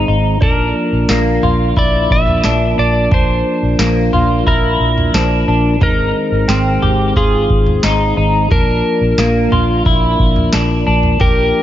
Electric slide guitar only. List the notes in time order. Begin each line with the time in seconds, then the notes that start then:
0.43 A#4
1.79 D5
2.12 E5
2.79 D5
3.14 C5
4.48 A#4
5.83 A#4
7.17 G#4
8.52 A#4
11.21 A#4